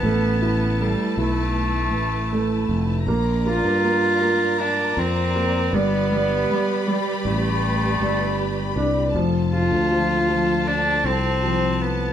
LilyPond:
<<
  \new Staff \with { instrumentName = "String section" } { \time 4/4 \key a \minor \tempo 4 = 79 << { <e' b' a''>1 | <f' bes' bes''>2.~ <f' bes' bes''>8 <g' b' b''>8~ | <g' b' b''>1 | <f' a' a''>1 | } \\ { r1 | d''1~ | d''1 | r1 | } >> }
  \new Staff \with { instrumentName = "Cello" } { \time 4/4 \key a \minor b4 g8 a2 r8 | r8 f'4. d'8 c'4 b8~ | b4 g8 a2 r8 | r8 f'4. d'8 c'4 b8 | }
  \new Staff \with { instrumentName = "Grand piano" } { \time 4/4 \key a \minor a8 e'8 a8 e'4. a4 | bes8 bes8 bes8 bes4. bes8 g8 | g8 g8 g4. g4 d'8 | f8 f8 f8 f4. f4 | }
  \new Staff \with { instrumentName = "Fretless electric bass" } { \clef bass \time 4/4 \key a \minor a,,4~ a,,16 r16 b,,4 a,,4 f,,8 | bes,,8. g,4.~ g,16 f,4 g,,8~ | g,,8 r4 a,,4 g,,4 c,8 | f,,8. d,4.~ d,16 c,4. | }
>>